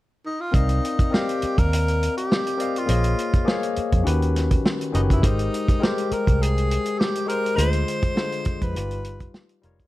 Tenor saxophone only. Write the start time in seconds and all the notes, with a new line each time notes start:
0.26 D#4
0.41 F4
0.55 D#4
1.14 G4
1.58 A#4
2.17 G4
2.79 F4
4.94 D#4
5.12 E4
5.26 D#4
5.83 G4
6.13 A#4
6.42 G#4
6.99 G4
7.28 A#4
7.56 C5
8.62 B4